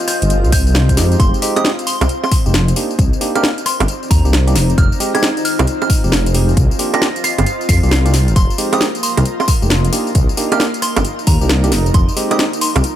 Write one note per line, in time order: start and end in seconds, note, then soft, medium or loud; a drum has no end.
0.00 1.18 C4 medium
0.00 3.49 F4 medium
0.00 1.18 C5 medium
0.00 1.83 C5 medium
0.00 0.13 D#5 loud
0.08 0.30 G6 medium
0.08 cross-stick medium
0.08 open hi-hat loud
0.08 tambourine medium
0.22 0.46 G1 loud
0.22 1.83 A#5 medium
0.22 closed hi-hat medium
0.22 tambourine soft
0.30 closed hi-hat medium
0.30 tambourine soft
0.44 0.99 C2 loud
0.44 tambourine soft
0.52 1.13 G6 medium
0.52 kick loud
0.52 open hi-hat loud
0.52 tambourine medium
0.67 tambourine soft
0.75 snare loud
0.75 tambourine soft
0.89 kick medium
0.89 closed hi-hat medium
0.89 tambourine soft
0.97 1.15 F2 loud
0.97 1.40 G#3 medium
0.97 1.40 C4 medium
0.97 1.40 D#4 medium
0.97 1.40 G4 loud
0.97 snare medium
0.97 open hi-hat loud
0.97 tambourine medium
1.12 closed hi-hat soft
1.12 tambourine soft
1.20 1.30 F1 loud
1.20 8.37 C4 medium
1.20 8.37 C5 medium
1.20 1.38 C6 medium
1.20 kick loud
1.20 closed hi-hat medium
1.20 tambourine soft
1.34 tambourine soft
1.42 1.54 G#3 loud
1.42 1.54 C4 medium
1.42 1.54 D#4 medium
1.42 1.54 G4 loud
1.42 open hi-hat loud
1.42 tambourine medium
1.50 2.76 D#5 medium
1.56 1.69 G#3 medium
1.56 1.69 C4 medium
1.56 1.69 D#4 medium
1.56 1.69 G4 loud
1.56 2.76 G#5 medium
1.56 1.71 D#6 medium
1.56 closed hi-hat medium
1.56 tambourine soft
1.56 high bongo medium
1.65 snare loud
1.65 tambourine soft
1.79 closed hi-hat soft
1.79 tambourine soft
1.87 2.05 C6 loud
1.87 open hi-hat loud
1.87 tambourine medium
2.01 2.07 C2 loud
2.01 closed hi-hat medium
2.01 tambourine soft
2.01 high bongo medium
2.09 closed hi-hat medium
2.09 tambourine soft
2.23 2.45 C6 medium
2.23 tambourine soft
2.23 high bongo medium
2.32 kick loud
2.32 open hi-hat loud
2.32 tambourine medium
2.46 2.73 F1 medium
2.46 2.53 G#3 medium
2.46 2.53 C4 medium
2.46 2.53 D#4 medium
2.46 2.53 G4 medium
2.46 tambourine soft
2.54 snare loud
2.54 tambourine soft
2.68 closed hi-hat medium
2.68 tambourine soft
2.76 2.94 A#3 medium
2.76 2.94 D4 medium
2.76 5.38 D#4 medium
2.76 2.94 D#4 medium
2.76 2.94 G4 medium
2.76 open hi-hat loud
2.76 tambourine medium
2.91 tambourine soft
2.99 3.09 C2 loud
2.99 kick loud
2.99 closed hi-hat medium
2.99 tambourine soft
3.13 tambourine soft
3.21 3.33 A#3 medium
3.21 3.33 D4 medium
3.21 3.33 D#4 medium
3.21 3.33 G4 loud
3.21 4.55 D5 medium
3.21 open hi-hat loud
3.21 tambourine medium
3.35 3.49 A#3 loud
3.35 3.49 D4 medium
3.35 3.49 D#4 medium
3.35 3.49 G4 loud
3.35 3.50 F6 medium
3.35 closed hi-hat medium
3.35 tambourine soft
3.35 high bongo medium
3.40 5.39 A#5 medium
3.40 cross-stick medium
3.40 snare loud
3.40 tambourine soft
3.58 closed hi-hat soft
3.58 tambourine soft
3.66 3.88 C6 medium
3.66 cross-stick medium
3.66 open hi-hat loud
3.66 tambourine medium
3.80 3.86 G1 loud
3.80 closed hi-hat medium
3.80 tambourine soft
3.80 high bongo medium
3.88 closed hi-hat medium
3.88 tambourine soft
4.03 tambourine soft
4.11 4.21 D#2 medium
4.11 4.71 A#5 medium
4.11 kick loud
4.11 open hi-hat loud
4.11 tambourine medium
4.25 4.57 C2 medium
4.25 4.32 A#3 medium
4.25 4.32 D4 medium
4.25 4.32 D#4 medium
4.25 4.32 G4 loud
4.25 tambourine soft
4.33 snare loud
4.33 tambourine soft
4.47 4.54 A#3 medium
4.47 4.54 D4 medium
4.47 4.54 D#4 medium
4.47 4.54 G4 loud
4.47 closed hi-hat medium
4.47 tambourine soft
4.55 4.74 F1 medium
4.55 10.66 F4 medium
4.55 snare medium
4.55 open hi-hat loud
4.55 tambourine medium
4.70 closed hi-hat soft
4.70 tambourine soft
4.78 4.88 F1 medium
4.78 4.96 F6 loud
4.78 kick loud
4.78 closed hi-hat medium
4.78 tambourine soft
4.92 tambourine soft
5.00 5.12 G#3 loud
5.00 5.12 C4 medium
5.00 5.12 D#4 medium
5.00 5.12 G4 loud
5.00 open hi-hat loud
5.00 tambourine medium
5.14 5.28 G#3 medium
5.14 5.28 C4 medium
5.14 5.28 D#4 medium
5.14 5.28 G4 loud
5.14 5.29 G#6 medium
5.14 closed hi-hat medium
5.14 tambourine soft
5.14 high bongo medium
5.22 6.57 G#5 medium
5.22 snare loud
5.22 tambourine soft
5.33 7.25 D#5 medium
5.37 closed hi-hat soft
5.37 tambourine soft
5.45 5.63 F6 loud
5.45 open hi-hat loud
5.45 tambourine medium
5.59 5.65 C2 loud
5.59 closed hi-hat medium
5.59 tambourine soft
5.59 high bongo medium
5.67 closed hi-hat medium
5.67 tambourine soft
5.82 6.04 F6 medium
5.82 tambourine soft
5.82 high bongo medium
5.90 kick loud
5.90 open hi-hat loud
5.90 tambourine medium
6.04 6.54 F1 medium
6.04 6.11 G#3 medium
6.04 6.11 C4 medium
6.04 6.11 D#4 medium
6.04 6.11 G4 medium
6.04 tambourine soft
6.12 snare loud
6.12 tambourine soft
6.26 closed hi-hat soft
6.26 tambourine soft
6.34 6.52 G#3 medium
6.34 6.52 C4 medium
6.34 6.52 D#4 medium
6.34 6.52 G4 medium
6.34 open hi-hat loud
6.34 tambourine medium
6.49 tambourine soft
6.57 6.68 C2 loud
6.57 kick loud
6.57 closed hi-hat medium
6.57 tambourine soft
6.71 tambourine soft
6.79 6.91 A#3 medium
6.79 6.91 D4 medium
6.79 6.91 F4 medium
6.79 6.91 G4 loud
6.79 open hi-hat loud
6.79 tambourine medium
6.94 7.07 A#3 loud
6.94 7.07 D4 medium
6.94 7.07 F4 medium
6.94 7.07 G4 loud
6.94 7.08 A#6 loud
6.94 closed hi-hat medium
6.94 tambourine soft
6.94 high bongo medium
7.02 cross-stick medium
7.02 snare loud
7.02 tambourine soft
7.16 closed hi-hat soft
7.16 tambourine soft
7.24 7.46 C7 loud
7.24 cross-stick medium
7.24 open hi-hat loud
7.24 tambourine medium
7.28 9.00 A#5 medium
7.38 7.44 G1 loud
7.38 9.00 C5 medium
7.38 closed hi-hat medium
7.38 tambourine soft
7.38 high bongo medium
7.46 closed hi-hat medium
7.46 tambourine soft
7.61 tambourine soft
7.69 7.79 F2 medium
7.69 8.30 C7 medium
7.69 kick loud
7.69 open hi-hat loud
7.69 tambourine medium
7.83 8.29 C2 medium
7.83 7.90 A#3 medium
7.83 7.90 D4 medium
7.83 7.90 F4 medium
7.83 7.90 G4 loud
7.83 tambourine soft
7.91 snare loud
7.91 tambourine soft
8.06 8.12 A#3 medium
8.06 8.12 D4 medium
8.06 8.12 F4 medium
8.06 8.12 G4 loud
8.06 closed hi-hat soft
8.06 tambourine soft
8.14 snare medium
8.14 open hi-hat loud
8.14 tambourine medium
8.28 8.34 G1 medium
8.28 closed hi-hat soft
8.28 tambourine soft
8.36 8.47 F1 medium
8.36 12.96 A#3 medium
8.36 12.96 A#4 medium
8.36 8.54 C6 medium
8.36 kick loud
8.36 closed hi-hat medium
8.36 tambourine soft
8.50 tambourine soft
8.58 8.71 G#3 loud
8.58 8.71 C4 medium
8.58 8.71 D#4 medium
8.58 8.71 G4 loud
8.58 9.93 D#5 medium
8.58 open hi-hat loud
8.58 tambourine medium
8.73 8.86 G#3 medium
8.73 8.86 C4 medium
8.73 8.86 D#4 medium
8.73 8.86 G4 loud
8.73 8.88 D#6 medium
8.73 closed hi-hat medium
8.73 tambourine soft
8.73 high bongo medium
8.81 snare loud
8.81 tambourine soft
8.95 closed hi-hat soft
8.95 tambourine soft
9.03 9.21 C6 medium
9.03 open hi-hat loud
9.03 tambourine medium
9.08 9.93 G#5 medium
9.17 9.23 C2 loud
9.17 closed hi-hat medium
9.17 tambourine soft
9.17 high bongo medium
9.25 closed hi-hat medium
9.25 tambourine soft
9.40 9.62 C6 medium
9.40 tambourine soft
9.40 high bongo medium
9.48 kick loud
9.48 open hi-hat loud
9.48 tambourine medium
9.62 9.89 F1 medium
9.62 9.69 G#3 medium
9.62 9.69 C4 medium
9.62 9.69 D#4 medium
9.62 9.69 G4 medium
9.62 tambourine soft
9.70 snare loud
9.70 tambourine soft
9.85 closed hi-hat medium
9.85 tambourine soft
9.93 10.10 A#3 medium
9.93 10.10 D4 medium
9.93 10.10 D#4 medium
9.93 12.55 D#4 medium
9.93 10.10 G4 medium
9.93 open hi-hat loud
9.93 tambourine medium
10.07 tambourine soft
10.15 10.26 C2 loud
10.15 kick loud
10.15 closed hi-hat medium
10.15 tambourine soft
10.29 tambourine soft
10.37 10.50 A#3 medium
10.37 10.50 D4 medium
10.37 10.50 D#4 medium
10.37 10.50 G4 loud
10.37 open hi-hat loud
10.37 tambourine medium
10.49 10.65 A#3 loud
10.49 10.65 D4 medium
10.49 10.65 D#4 medium
10.49 10.65 G4 loud
10.49 12.43 A#5 medium
10.49 10.67 F6 medium
10.49 closed hi-hat medium
10.49 tambourine soft
10.49 high bongo medium
10.60 cross-stick medium
10.60 snare loud
10.60 tambourine soft
10.74 11.72 D5 medium
10.74 closed hi-hat soft
10.74 tambourine soft
10.82 11.04 C6 loud
10.82 cross-stick medium
10.82 open hi-hat loud
10.82 tambourine medium
10.96 11.03 G1 loud
10.96 closed hi-hat medium
10.96 tambourine soft
10.96 high bongo medium
11.05 closed hi-hat medium
11.05 tambourine soft
11.19 tambourine soft
11.27 11.38 D#2 medium
11.27 11.88 A#5 medium
11.27 kick loud
11.27 open hi-hat loud
11.27 tambourine medium
11.41 11.73 C2 medium
11.41 11.48 A#3 medium
11.41 11.48 D4 medium
11.41 11.48 D#4 medium
11.41 11.48 G4 loud
11.41 tambourine soft
11.49 snare loud
11.49 tambourine soft
11.64 11.71 A#3 medium
11.64 11.71 D4 medium
11.64 11.71 D#4 medium
11.64 11.71 G4 loud
11.64 closed hi-hat medium
11.64 tambourine soft
11.72 11.90 F1 medium
11.72 12.96 F4 medium
11.72 snare medium
11.72 open hi-hat loud
11.72 tambourine medium
11.86 closed hi-hat soft
11.86 tambourine soft
11.94 12.05 F1 loud
11.94 12.13 C6 loud
11.94 kick loud
11.94 closed hi-hat medium
11.94 tambourine soft
12.09 tambourine soft
12.17 12.29 G#3 loud
12.17 12.29 C4 medium
12.17 12.29 D#4 medium
12.17 12.29 G4 loud
12.17 open hi-hat loud
12.17 tambourine medium
12.31 12.44 G#3 medium
12.31 12.44 C4 medium
12.31 12.44 D#4 medium
12.31 12.44 G4 loud
12.31 12.46 D#6 medium
12.31 closed hi-hat medium
12.31 tambourine soft
12.31 high bongo medium
12.39 snare loud
12.39 tambourine soft
12.53 12.96 D#5 medium
12.53 closed hi-hat soft
12.53 tambourine soft
12.61 12.96 G#5 medium
12.61 12.80 C6 loud
12.61 open hi-hat loud
12.61 tambourine medium
12.76 12.82 C2 loud
12.76 closed hi-hat medium
12.76 tambourine soft
12.76 high bongo medium
12.84 closed hi-hat medium
12.84 tambourine soft